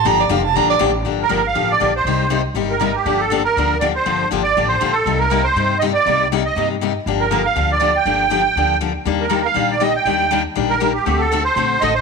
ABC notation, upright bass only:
X:1
M:4/4
L:1/8
Q:"Swing" 1/4=240
K:Gm
V:1 name="Upright bass" clef=bass
G,,,2 F,,,2 B,,,2 A,,,2 | G,,,2 G,,,2 A,,,2 B,,,2 | C,,4 G,,,4 | G,,,4 D,,4 |
G,,,2 G,,,2 A,,,2 B,,,2 | C,,4 G,,4 | C,,4 G,,4 | G,,,4 D,,4 |
G,,,4 D,,4 | E,,4 B,,,4 | E,,4 B,,,4 | D,,4 B,,,2 A,,,2 |]